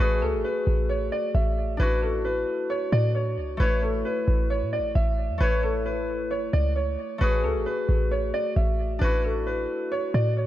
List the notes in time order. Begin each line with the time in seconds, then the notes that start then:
Already playing: A3 E4 C#5
0.00 A1 F#4 G#4 B4
0.22 C#2 A4
0.34 A1
0.44 B4
0.67 A1
0.89 C#5
1.12 D5
1.35 A1 E5
1.77 A1 D4 E4 B4
1.82 F#4
2.02 A4
2.25 B4
2.70 C#5
2.92 A2 D5
3.15 C#5
3.37 C#2
3.57 A1 A3 E4 B4
3.62 C#5
3.82 A4
4.05 B4
4.28 A1
4.50 C#5
4.62 A2
4.73 D5
4.79 A1
4.95 A1 E5
5.30 E2
5.38 A1 A3 E4 B4
5.43 C#5
5.63 A4
5.86 B4
6.31 C#5
6.53 C#2 D5
6.76 C#5
7.18 A1 A3 F#4 B4
7.23 G#4
7.44 C#2 A4
7.56 A1
7.66 B4
7.89 A1
8.11 C#5
8.34 D5
8.56 A1 E5
8.99 A1 D4 E4 B4
9.04 F#4
9.24 A4
9.47 B4
9.92 C#5
10.14 A2 D5
10.37 C#5